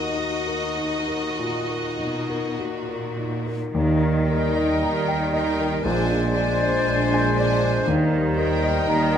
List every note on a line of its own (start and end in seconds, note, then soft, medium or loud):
0.00 1.35 D#2 soft
0.00 0.78 D#4 soft
0.00 3.54 D#4 soft
0.00 3.54 F#4 soft
0.00 0.47 A#4 soft
0.00 2.60 D#5 medium
0.17 1.96 D#2 soft
0.17 0.67 F#4 soft
0.47 0.96 A#4 soft
0.78 1.27 D#4 soft
1.08 1.57 A#4 soft
1.39 1.87 A#2 soft
1.69 2.17 A#4 soft
1.99 2.59 B2 soft
1.99 2.47 D#4 soft
2.29 2.77 A#4 soft
2.59 3.75 A#2 soft
2.59 3.06 F#4 soft
2.89 3.36 A#4 soft
3.19 3.65 D#4 soft
3.47 3.75 A#4 soft
3.74 5.80 D#2 soft
3.74 4.70 D#2 medium
3.74 4.70 D#2 soft
3.74 4.70 D#3 soft
3.74 5.80 G3 soft
3.74 5.81 G3 soft
3.74 5.81 D#4 soft
3.74 5.80 A#4 soft
3.74 5.85 A#4 soft
3.74 5.86 D#5 soft
4.03 4.46 D#4 soft
4.29 5.32 D#4 soft
4.29 4.72 A#4 soft
4.29 5.32 A#4 soft
4.29 5.32 G5 soft
4.57 4.98 D#5 soft
4.82 5.72 D#2 soft
4.82 5.72 D#3 soft
4.82 5.24 A#5 soft
5.08 5.49 G5 soft
5.33 5.83 D#4 soft
5.33 5.83 A#4 soft
5.33 5.74 D#5 soft
5.33 5.83 G5 soft
5.59 5.84 A#4 soft
5.84 6.73 A#1 medium
5.84 6.73 A#1 soft
5.84 7.84 A#1 medium
5.84 6.74 A#2 soft
5.84 7.83 G#3 soft
5.84 7.84 G#3 medium
5.84 6.34 D4 soft
5.84 7.84 D4 medium
5.84 8.89 C5 medium
5.84 6.32 C5 soft
5.84 7.83 C5 medium
5.84 7.87 D5 soft
5.84 6.34 G#5 soft
6.10 6.50 D4 soft
6.34 7.35 D4 soft
6.34 7.34 C5 soft
6.34 6.76 C5 soft
6.34 7.35 G#5 soft
6.62 7.02 D5 soft
6.85 7.75 A#1 soft
6.85 7.75 A#2 soft
6.85 7.28 C6 soft
7.14 7.53 G#5 soft
7.36 7.86 D4 soft
7.36 7.86 C5 soft
7.36 7.78 D5 soft
7.36 7.86 G#5 soft
7.63 7.88 C5 soft
7.86 8.75 D#2 medium
7.86 8.76 D#2 soft
7.86 9.18 D#2 soft
7.86 8.76 D#3 soft
7.86 9.18 G3 medium
7.86 9.18 G3 soft
7.86 9.18 D#4 soft
7.86 9.18 A#4 soft
7.86 9.18 D#5 soft
8.12 8.52 D#4 soft
8.37 9.18 D#4 soft
8.37 8.78 A#4 soft
8.37 9.18 A#4 soft
8.37 9.18 G5 soft
8.63 9.04 D#5 soft
8.87 9.18 D#2 soft
8.87 9.18 D#2 medium
8.87 9.18 D#3 medium
8.87 9.18 A#4 medium
8.87 9.18 A#5 medium